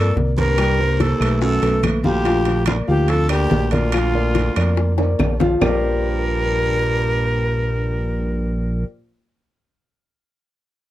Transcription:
Already playing: F2 G2 A#3 A4 A#4 D5
0.16 C2, high bongo, low bongo, high conga
0.37 G2 A#3 A#4 C5, high bongo, high conga, high timbale
0.58 G3 G4 G5, high bongo, high conga, high timbale, claves
0.79 A#3 A#4 C5, high bongo, high conga
1.00 D#2 A4, high bongo, high conga, high timbale
1.20 B1 A3 A4 B4, high conga, high timbale, claves
1.41 F#2 A4, high bongo, high conga
1.62 B1 A3 A4 B4, high bongo, high conga, high timbale
1.83 A#1, high bongo, low bongo, high conga, high timbale, claves
2.04 D2 F3 F4 G4 F5, high bongo, high conga
2.25 F3 F4 F5, high bongo, high conga, high timbale
2.45 high bongo, high conga, high timbale
2.66 D2 A#3 F4 A#4 D5, high bongo, high conga, high timbale, claves
2.87 D2 D#2 F3 F4 G4 F5, high conga
3.08 F2 A4, high bongo, high conga, high timbale
3.29 D2 A#3 G4 A#4 D5, high bongo, high conga, high timbale, claves
3.50 A#1, high bongo, low bongo, high conga, low timbale
3.71 D2 A#3 F4 A#4 D5, high bongo, high conga, high timbale
3.92 F3 F4 F5, high bongo, high conga, high timbale, claves
4.15 A#3 A#4 D5, high bongo, high conga
4.35 high bongo, high conga, high timbale
4.56 F2 A#3 A#4 D5, high conga, high timbale, claves
4.77 high bongo, high conga
4.98 A#3 A#4 D5, high bongo, high conga, high timbale
5.19 A#1, low bongo, high conga, low timbale, claves
5.40 F3 F4 F5, low bongo, high conga, low timbale
5.61 A#1 G2 A#3 F4 G4 A#4 C5 D5, low bongo, low conga, low timbale, claves

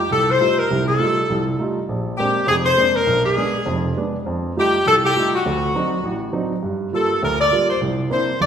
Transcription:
0.11 C2 A4
0.31 C5
0.40 G3 A3 D#4 F4
0.59 A#4
0.70 C2 C3
0.88 A4
0.99 G3 A3 D#4 F4
1.30 C2
1.59 G3 A3 D#4 F4
1.89 A#1
2.18 G#3 A#3 C4 D4 G4
2.47 F1 F2 G#4
2.66 C5
2.77 G#3 A#3 C4 D4
2.96 A#4
3.06 B1
3.26 G#4
3.36 G#3 B3 D4
3.66 F1 F2
3.97 G#3 B3 D4
4.26 F2
4.57 G3 A3 D#4 F4 G4
4.86 C2 A4
5.05 G4
5.16 G3 A3 D#4 F4
5.35 F#4
5.46 D2
5.75 F#3 C4 D4 D#4
6.03 A1
6.33 F#3 C4 D4 D#4
6.63 G2
6.92 G3 A#3 F4 A4
7.23 D2 A#4
7.41 D5
7.51 G3 A#3 F4
7.70 C5
7.81 C2
8.10 A#3 C4 D4 E4 C5
8.40 G1 D5

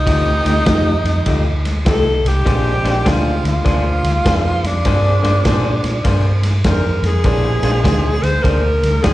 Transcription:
Already playing: D#4
0.06 D2 F3 A3 C4 D#4 G4, kick, snare, ride
0.44 D2 F3 A3 D#4 G4, snare, ride
0.55 muted clean electric guitar stroke
0.66 F2 F3 A3 D#4 G4, kick, snare, ride
1.04 F2, snare, ride
1.26 D2 F3 A3 D#4 G4, kick, snare, ride
1.46 muted clean electric guitar stroke
1.65 snare, ride
1.85 C2 F3 A3 D#4 G4 A4, kick, snare, ride
2.05 muted clean electric guitar stroke
2.25 C2 G4, snare, ride
2.45 A#1 G#3 A#3 C4 D4 F4 G#4 C5, kick, snare, ride
2.83 A#1 A#3 D4 G#4 C5, snare, ride
2.96 muted clean electric guitar stroke
3.05 D2 A#3 D4 F4 G#4 C5, kick, snare, ride
3.44 D2 F4, snare, ride
3.65 D2 A#3 D4 G#4 C5, kick, snare, ride
3.85 muted clean electric guitar stroke
4.04 D2, snare, ride
4.25 F2 A#3 D4 G#4 C5, kick, snare, ride
4.45 muted clean electric guitar stroke
4.63 F2 D4, snare, ride
4.85 G2 A#3 C4 D4 F4 G#4 C5, kick, snare, ride
5.23 G2 A#3 D4 G#4 C5, snare, ride
5.35 muted clean electric guitar stroke
5.45 A#2 A#3 D4 G#4 C5, kick, snare, ride
5.84 A#2, snare, ride
6.04 G2 A#3 D4 G#4 C5, kick, snare, ride
6.25 muted clean electric guitar stroke
6.43 snare, ride
6.64 F2 A#3 D4 G#4 A#4 C5, kick, snare, ride
6.84 muted clean electric guitar stroke
7.03 F2 G#4, snare, ride
7.24 A#1 G3 A#3 B3 C#4 D4 E4 G#4 C5, kick, snare, ride
7.62 A#1 G#3 A#3 C4 D4 F4 G#4 C5, snare, ride
7.73 muted clean electric guitar stroke
7.83 D2 A#3 D4 G#4 C5, kick, snare, ride
8.22 D2 C5, snare, ride
8.41 D2 A#3 D4 G#4 A4 A#4 C5, kick, snare, ride
8.63 muted clean electric guitar stroke
8.83 D2, snare, ride
9.02 F2 A#3 D4 G#4 C5, kick, snare, ride

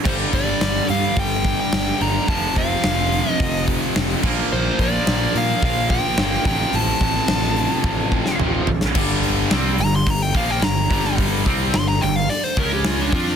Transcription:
0.04 G1 G2 D3 G3 C5, kick, crash
0.33 G1 D5, kick, open hi-hat
0.61 G1, snare, open hi-hat
0.88 G2 F5, open hi-hat
1.16 G1 G5, kick, open hi-hat
1.44 kick, open hi-hat
1.60 G5
1.73 G1, snare, open hi-hat
2.00 G1 D3 G3 A#5, open hi-hat
2.05 G2
2.28 F1 F2 C3 A5, kick, open hi-hat
2.32 F3
2.56 F1 F5, kick, open hi-hat
2.84 F1, snare, open hi-hat
3.12 open hi-hat
3.32 D#5
3.40 F1, kick, open hi-hat
3.67 kick, open hi-hat
3.96 F1, snare, open hi-hat
4.23 A#1 A#2 F3 A#3, kick, crash
4.52 A#1 C5
4.79 A#1 D5, kick, open hi-hat
5.07 A#1, snare, open hi-hat
5.35 A#2 F5, open hi-hat
5.62 A#1 F5, kick, open hi-hat
5.90 G5, kick, open hi-hat
6.17 G1 A#2 F3, snare, open hi-hat
6.21 A#3
6.45 A1 F2 C3 F3 G5, kick, open hi-hat
6.73 A1 A5, open hi-hat
7.01 A1, kick, open hi-hat
7.28 A1, snare, open hi-hat
7.56 open hi-hat
7.84 A1, kick
8.12 kick
8.26 snare
8.39 A1 F2 C3, mid tom
8.44 F3
8.67 A1, floor tom
8.81 snare
8.95 G1 G2 D3 G3, kick, crash
9.23 open hi-hat
9.51 C2 C3 G3 C4, snare, open hi-hat
9.78 G1 G2 D3 A#5, open hi-hat
9.96 C6
10.07 G1 G2 D3 A#5, kick, open hi-hat
10.22 G5
10.34 A#1 A#2 F3 A#3 F5, kick, open hi-hat
10.50 G5
10.62 G1 G2 D3 A#5, snare, open hi-hat
10.91 G1 G2 D3 G3, kick, open hi-hat
11.05 snare
11.18 kick, open hi-hat
11.46 C2 C3 G3 C4, kick, open hi-hat
11.74 G1 G2 D3 C6, snare, open hi-hat
11.88 A#5
12.01 G1 G2 D3 G5, open hi-hat
12.16 F5
12.29 D5, open hi-hat
12.44 C5
12.57 C#2 C#3 G#3 C#4 A#4, kick, open hi-hat
12.73 G4
12.84 F4, snare, open hi-hat
13.01 D4
13.12 F2 F3 C4 D4 F4, kick, open hi-hat
13.27 snare

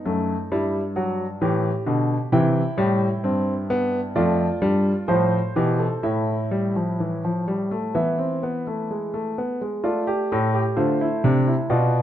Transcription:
Already playing: D#4
0.05 F#2 A3
0.52 G2 G3 E4
0.96 F#3 F#4
1.41 A2 E3 G4
1.86 B2 D3
2.32 C3 E3 E4 G5
2.77 A2 G3
3.24 G2 C4
3.70 B3
4.16 F2 A3 F4 D5
4.62 G2 G3
5.08 A2 F3 F4 C5
5.56 B2 E3 G4
5.79 A4
6.03 A2 A3 E4 E5
6.51 G3
6.76 F3
7.00 E3
7.25 F3
7.48 G3
7.71 A3
7.95 E3 B3 E4 E5
8.19 C4
8.43 B3
8.67 A3
8.91 G#3
9.14 A3
9.38 B3
9.61 G#3
9.84 A3 F4 D5
10.07 G4
10.32 A2 A4
10.54 G4
10.76 D3 A3 F4 C5
11.01 E4
11.24 C3 D4
11.47 E4
11.70 B2 B3 F4 D5

